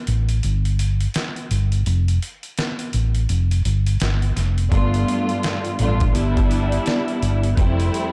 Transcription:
0.07 fingered electric bass A1, closed hi-hat
0.29 closed hi-hat
0.43 fingered electric bass G1, closed hi-hat
0.65 closed hi-hat
0.79 closed hi-hat
1.01 closed hi-hat
1.14 snare, closed hi-hat
1.36 closed hi-hat
1.51 fingered electric bass G1, closed hi-hat
1.72 closed hi-hat
1.86 fingered electric bass F1, closed hi-hat
2.08 closed hi-hat
2.23 closed hi-hat
2.43 closed hi-hat
2.58 snare, closed hi-hat
2.79 closed hi-hat
2.93 fingered electric bass A1, closed hi-hat
3.15 closed hi-hat
3.29 fingered electric bass F1, closed hi-hat
3.51 closed hi-hat
3.65 fingered electric bass G1, closed hi-hat
3.87 closed hi-hat
4.00 fingered electric bass G1, snare, closed hi-hat
4.22 closed hi-hat
4.36 fingered electric bass F1, snare, closed hi-hat
4.58 closed hi-hat
4.71 fingered electric bass G1, string section G2 A3 B3 D4 F4, kick, closed hi-hat
4.94 closed hi-hat
5.08 closed hi-hat
5.29 closed hi-hat
5.43 snare, closed hi-hat
5.65 closed hi-hat
5.79 fingered electric bass A1, string section G2 A3 B3 D4 F4, closed hi-hat
6.00 kick, closed hi-hat
6.12 fingered electric bass G1, string section G3 B3 D4 E4, closed hi-hat
6.37 kick, closed hi-hat
6.51 closed hi-hat
6.72 closed hi-hat
6.86 snare, closed hi-hat
7.08 closed hi-hat
7.22 fingered electric bass G1, closed hi-hat
7.43 closed hi-hat
7.55 fingered electric bass F1, string section F2 G3 A3 C4 E4, kick, closed hi-hat
7.80 closed hi-hat
7.94 closed hi-hat

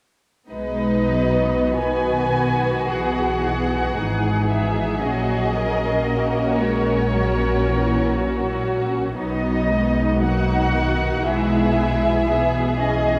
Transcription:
0.50 double bass section B1, cello section B2, viola section G#3 B3, violin section D#4 B4 D#5
1.14 viola section F#3
1.78 viola section D#3, violin section F#4 B4 G#5
2.90 double bass section B1, cello section B2, viola section E3 B3, violin section G#4 F#5
3.97 double bass section G#1, cello section G#2, viola section E3 D#4, violin section G#4
4.50 violin section G#4 E5
5.02 double bass section A#1, cello section A#2, viola section F#3 C#4, violin section F#4 D#5
5.54 violin section A#4
6.06 viola section A#3, violin section F#4 A#4
6.59 viola section G#3, violin section C#5
7.13 viola section F#3, violin section F#4 A#4
7.65 viola section E3
8.16 viola section F#3, violin section F#4
9.18 double bass section B1, cello section B2, viola section F#3 B3, violin section D#4 D#5
9.70 viola section G#3
10.21 viola section F#3 A#3, violin section D#4 F#4 F#5
10.73 viola section D#3
11.25 double bass section B1, cello section B2, viola section E3 G#3, violin section E4 G#4 E5
11.77 viola section G#3
12.28 viola section B3, violin section G#4
12.78 viola section C#4, violin section D#5

